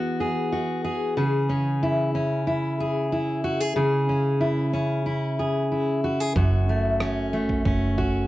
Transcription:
0.00 2.07 E3 medium
0.00 1.23 B3 soft
0.00 0.51 F#4 medium
0.00 0.20 G#4 medium
0.20 0.84 G#4 medium
0.52 1.24 F#4 medium
0.84 1.17 G#4 medium
1.17 3.75 C#3 medium
1.17 2.79 G#4 medium
1.49 2.14 C#4 soft
1.83 2.47 E4 medium
2.15 4.09 C#4 medium
2.47 3.12 E4 medium
2.80 3.44 G#4 medium
3.12 4.40 E4 medium
3.44 3.60 F#4 medium
3.60 3.75 G#4 soft
3.76 6.36 C#3 medium
3.76 5.38 G#4 medium
4.09 4.73 C#4 soft
4.41 5.06 E4 medium
4.73 6.69 C#4 soft
5.06 5.71 E4 medium
5.39 6.03 G#4 medium
5.71 7.00 E4 medium
6.04 6.20 F#4 medium
6.20 6.36 G#4 soft
6.36 7.62 F#1 medium
6.36 8.27 F#2 medium
6.36 7.97 F#4 medium
6.36 kick loud
6.69 7.33 A3 soft
7.00 7.64 C#4 medium
7.00 cross-stick medium
7.33 8.27 A3 medium
7.49 kick medium
7.65 8.27 F#1 medium
7.65 8.27 C#4 medium
7.65 kick medium
7.98 8.27 F#4 medium
7.98 kick medium

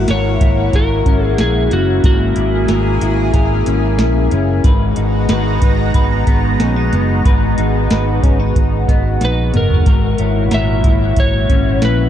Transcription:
0.00 2.02 G#2 medium
0.00 4.61 A#3 medium
0.00 0.39 E4 medium
0.00 4.61 E4 medium
0.00 0.12 F#4 medium
0.00 2.01 F#4 medium
0.08 0.37 G#1 medium
0.08 0.72 A#4 medium
0.08 0.76 C#5 medium
0.08 snare loud
0.08 closed hi-hat medium
0.41 0.69 G#1 medium
0.41 1.38 E4 medium
0.41 kick medium
0.41 closed hi-hat medium
0.73 1.02 G#1 loud
0.73 2.03 A#4 medium
0.73 1.26 A#4 medium
0.73 kick medium
0.73 closed hi-hat soft
1.06 1.35 G#1 medium
1.06 1.70 C#4 medium
1.06 kick medium
1.06 closed hi-hat soft
1.26 1.40 G#4 medium
1.38 1.68 A#1 medium
1.38 2.35 E4 medium
1.38 1.73 G#4 medium
1.38 snare loud
1.38 closed hi-hat medium
1.71 2.00 F#1 medium
1.71 3.65 C#4 medium
1.71 2.02 F#4 medium
1.71 closed hi-hat soft
2.04 2.33 G#1 medium
2.04 4.63 G#2 medium
2.04 3.31 F#4 medium
2.04 4.62 G#4 medium
2.04 2.68 A#4 medium
2.04 kick loud
2.04 closed hi-hat medium
2.36 2.65 G#1 medium
2.36 3.00 E4 medium
2.36 closed hi-hat soft
2.68 2.98 G#1 medium
2.68 3.32 A#4 medium
2.68 snare loud
2.68 closed hi-hat medium
3.01 3.30 G#1 medium
3.01 3.98 E4 medium
3.01 closed hi-hat medium
3.33 3.63 G#1 medium
3.33 4.64 A#4 medium
3.33 kick medium
3.33 closed hi-hat medium
3.66 3.99 G#1 medium
3.66 4.31 C#4 medium
3.66 closed hi-hat soft
3.99 4.28 A#1 medium
3.99 4.71 E4 medium
3.99 snare loud
3.99 closed hi-hat medium
4.31 4.61 F#1 medium
4.31 4.71 C#4 medium
4.31 closed hi-hat soft
4.64 4.93 G#1 loud
4.64 7.24 G#2 medium
4.64 9.82 G#3 medium
4.64 9.82 B3 medium
4.64 9.82 D#4 medium
4.64 12.09 F#4 medium
4.64 5.28 B4 medium
4.64 9.82 A#5 medium
4.64 kick loud
4.64 closed hi-hat medium
4.96 5.26 G#1 medium
4.96 5.61 D#4 medium
4.96 closed hi-hat soft
5.29 5.58 G#1 medium
5.29 5.94 B4 medium
5.29 snare loud
5.29 closed hi-hat medium
5.62 5.91 G#1 medium
5.62 6.59 D#4 medium
5.62 kick medium
5.62 closed hi-hat medium
5.94 6.23 G#1 medium
5.94 7.25 B4 medium
5.94 kick medium
5.94 closed hi-hat soft
6.27 6.56 G#1 medium
6.27 6.91 B3 medium
6.27 kick medium
6.27 closed hi-hat medium
6.60 6.89 A#1 medium
6.60 6.76 C#4 medium
6.60 snare medium
6.60 closed hi-hat medium
6.76 7.57 D#4 soft
6.93 7.22 F#1 medium
6.93 8.87 B3 medium
6.93 closed hi-hat soft
7.25 7.54 G#1 medium
7.25 9.85 G#2 medium
7.25 7.89 B4 medium
7.25 kick loud
7.25 closed hi-hat medium
7.58 7.87 G#1 medium
7.58 8.23 D#4 medium
7.58 closed hi-hat soft
7.90 8.19 G#1 medium
7.90 8.56 B4 medium
7.90 snare loud
7.90 closed hi-hat medium
8.23 8.52 G#1 medium
8.23 8.39 C#4 medium
8.23 kick medium
8.23 closed hi-hat medium
8.39 9.20 D#4 soft
8.56 8.85 G#1 medium
8.56 kick medium
8.56 closed hi-hat medium
8.88 9.17 G#1 medium
8.88 9.52 B3 medium
8.88 kick medium
8.88 closed hi-hat medium
9.21 9.50 A#1 medium
9.21 9.93 D#4 medium
9.21 9.56 B4 medium
9.21 snare medium
9.21 closed hi-hat medium
9.54 9.83 F#1 medium
9.54 9.93 B3 medium
9.54 10.56 A#4 medium
9.54 closed hi-hat soft
9.54 mid tom medium
9.70 floor tom medium
9.86 10.15 G#1 medium
9.86 12.09 G#2 medium
9.86 12.09 A#2 medium
9.86 12.09 E4 medium
9.86 10.50 A#4 medium
9.86 kick loud
9.86 closed hi-hat medium
10.18 10.48 G#1 medium
10.18 10.83 E4 soft
10.18 12.09 C#5 soft
10.18 closed hi-hat soft
10.51 10.80 G#1 medium
10.51 11.17 A#4 medium
10.51 11.20 E5 medium
10.51 snare loud
10.51 closed hi-hat medium
10.84 11.13 G#1 medium
10.84 11.81 E4 medium
10.84 kick medium
10.84 closed hi-hat medium
11.17 11.45 G#1 medium
11.17 11.85 C#5 medium
11.17 kick medium
11.17 closed hi-hat medium
11.49 11.78 G#1 medium
11.49 12.09 C#4 medium
11.49 kick medium
11.49 closed hi-hat soft
11.82 12.09 A#1 medium
11.82 12.09 E4 medium
11.82 12.09 B4 medium
11.82 snare loud
11.82 closed hi-hat medium

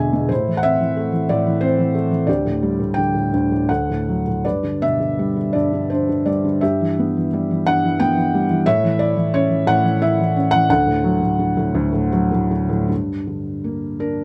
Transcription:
0.00 0.32 E2 medium
0.00 0.13 B2 medium
0.00 0.32 D3 medium
0.00 0.32 G#3 soft
0.00 0.32 G#4 soft
0.00 0.32 D5 medium
0.00 0.32 E5 medium
0.00 0.28 G#5 medium
0.13 0.30 B2 soft
0.29 1.28 A2 medium
0.29 1.25 E4 medium
0.29 0.57 C5 medium
0.47 0.79 E3 soft
0.57 0.64 F#5 medium
0.63 1.61 C4 soft
0.63 1.30 E5 medium
0.81 1.11 E3 soft
0.97 1.93 A3 medium
1.12 1.45 E3 medium
1.29 2.26 A2 medium
1.29 1.63 D5 medium
1.46 1.77 E3 medium
1.61 2.27 C4 medium
1.61 2.30 C5 medium
1.79 2.10 E3 medium
1.95 2.27 A3 medium
2.11 2.27 E3 medium
2.27 3.32 D2 medium
2.27 3.29 G4 medium
2.27 2.98 D5 medium
2.45 2.78 A2 soft
2.63 3.66 G3 medium
2.80 3.13 A2 soft
2.94 3.68 D3 soft
2.94 3.70 G5 medium
3.15 3.50 A2 soft
3.34 3.69 D2 medium
3.52 3.69 A2 soft
3.69 4.43 D2 medium
3.69 4.41 A4 soft
3.69 4.22 F#5 medium
3.89 4.26 A2 soft
4.09 4.44 F#3 soft
4.27 4.45 A2 soft
4.45 5.54 G2 soft
4.45 5.51 B4 soft
4.45 4.83 D5 medium
4.63 4.99 D3 soft
4.82 6.23 B2 soft
4.82 5.57 E5 medium
5.00 5.35 D3 soft
5.19 6.24 G3 soft
5.36 5.72 D3 soft
5.53 6.59 G2 medium
5.53 5.91 D5 medium
5.73 6.08 D3 soft
5.90 6.60 D4 medium
5.90 6.27 C5 medium
6.09 6.43 D3 soft
6.26 6.61 G3 soft
6.26 6.63 D5 medium
6.44 6.62 D3 soft
6.61 7.66 G2 medium
6.61 7.62 G4 medium
6.61 7.27 E5 medium
6.81 7.15 E3 soft
6.99 7.99 B3 medium
7.17 7.49 E3 soft
7.33 8.33 G3 medium
7.51 7.83 E3 soft
7.67 8.64 G2 medium
7.67 8.00 F#5 loud
7.84 8.16 E3 medium
8.00 8.64 B3 medium
8.00 8.46 G5 medium
8.17 8.49 E3 soft
8.34 8.66 G3 medium
8.50 8.66 E3 medium
8.66 9.65 A2 medium
8.66 9.32 C#5 medium
8.66 9.01 E5 loud
8.84 9.15 E3 medium
8.99 10.00 E4 medium
8.99 9.35 D5 medium
9.16 9.49 E3 medium
9.34 10.35 C#4 medium
9.34 9.69 C#5 medium
9.50 9.83 E3 soft
9.67 10.66 A2 medium
9.67 10.03 F#5 loud
9.84 10.18 E3 medium
10.02 10.68 E4 medium
10.02 10.55 E5 medium
10.20 10.52 E3 medium
10.36 10.69 C#4 medium
10.51 10.70 E3 medium
10.51 10.69 F#5 loud
10.69 11.73 D2 medium
10.69 12.10 A4 medium
10.69 12.09 F#5 loud
10.86 11.20 A2 medium
11.04 12.11 F#3 medium
11.21 11.55 A2 soft
11.39 12.50 D3 medium
11.57 11.91 A2 medium
11.75 12.87 D2 medium
11.93 12.31 A2 medium
12.12 12.88 F#3 medium
12.32 12.68 A2 medium
12.51 12.89 D3 medium
12.69 12.89 A2 medium
12.88 14.24 G2 soft
13.27 14.24 D3 soft
13.64 14.24 A#3 soft
14.00 14.24 D4 soft
14.00 14.24 A#4 medium

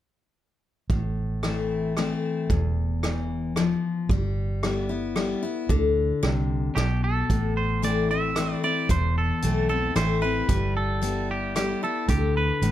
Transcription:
0.90 2.14 A1 medium
0.90 1.92 A2 medium
0.90 kick medium
1.43 1.94 E3 soft
1.43 1.95 A3 medium
1.43 1.95 C4 soft
1.43 1.95 E4 soft
1.43 cross-stick medium
1.97 2.48 E3 medium
1.97 2.48 A3 soft
1.97 2.48 C4 medium
1.97 2.48 E4 medium
1.97 cross-stick medium
2.50 3.74 E1 medium
2.50 3.52 E2 medium
2.50 kick medium
3.03 3.54 E3 medium
3.03 cross-stick medium
3.56 4.08 F3 medium
3.56 cross-stick medium
4.09 5.33 G1 medium
4.09 4.62 G3 medium
4.09 kick medium
4.63 4.89 G3 medium
4.63 4.90 B3 medium
4.63 4.88 E4 medium
4.63 cross-stick medium
4.89 5.16 B3 soft
4.89 5.15 E4 soft
5.16 5.42 G3 medium
5.16 5.42 B3 medium
5.16 5.41 E4 medium
5.16 cross-stick medium
5.43 5.70 B3 soft
5.43 5.69 E4 soft
5.69 6.11 D2 medium
5.69 6.71 D3 medium
5.69 kick medium
6.23 6.69 C2 medium
6.23 6.74 C3 medium
6.23 cross-stick medium
6.76 7.22 B1 medium
6.76 7.28 B2 medium
6.76 7.01 G4 medium
6.76 cross-stick medium
7.04 7.53 A4 medium
7.30 8.54 A1 medium
7.30 8.32 A2 medium
7.30 kick medium
7.30 closed hi-hat medium
7.57 7.84 C5 medium
7.82 8.08 E3 soft
7.82 8.09 A3 medium
7.82 8.09 C4 medium
7.82 8.09 E4 medium
7.82 8.10 D5 medium
7.82 closed hi-hat soft
8.11 8.37 C4 soft
8.11 8.36 E4 soft
8.11 8.54 E5 medium
8.36 8.62 E3 soft
8.36 8.63 A3 medium
8.36 8.63 C4 medium
8.36 8.62 E4 medium
8.36 cross-stick medium
8.36 closed hi-hat soft
8.54 8.64 D5 medium
8.64 8.90 C4 soft
8.64 8.89 E4 medium
8.64 8.91 D5 medium
8.89 9.31 E1 medium
8.89 9.91 E2 medium
8.89 9.17 C5 medium
8.89 kick medium
8.89 closed hi-hat medium
9.18 9.68 A4 medium
9.42 9.89 B1 medium
9.42 9.69 E3 soft
9.42 9.69 A3 medium
9.42 9.70 C4 medium
9.42 9.68 E4 medium
9.42 closed hi-hat medium
9.69 9.96 C4 soft
9.69 9.95 E4 soft
9.69 9.95 A4 medium
9.96 10.41 A1 medium
9.96 10.22 E3 medium
9.96 10.22 A3 medium
9.96 10.23 C4 medium
9.96 10.21 E4 medium
9.96 10.21 C5 medium
9.96 cross-stick medium
9.96 closed hi-hat medium
10.22 10.49 C4 soft
10.22 10.48 E4 medium
10.22 10.76 B4 medium
10.49 11.73 G1 medium
10.49 11.00 G3 medium
10.49 kick medium
10.49 closed hi-hat medium
10.77 11.31 A4 medium
11.02 11.53 G3 medium
11.02 11.54 B3 soft
11.02 11.54 E4 medium
11.02 closed hi-hat medium
11.31 11.55 G4 medium
11.56 11.82 G3 medium
11.56 11.82 B3 medium
11.56 11.81 E4 medium
11.56 11.83 G4 medium
11.56 cross-stick medium
11.56 closed hi-hat medium
11.83 12.09 B3 soft
11.83 12.09 E4 medium
11.83 12.08 A4 medium
12.08 12.50 D2 medium
12.08 12.71 D3 medium
12.08 12.35 G4 medium
12.08 kick loud
12.08 closed hi-hat medium
12.37 12.71 B4 medium
12.62 12.71 A1 medium
12.62 12.71 A2 medium
12.62 closed hi-hat soft

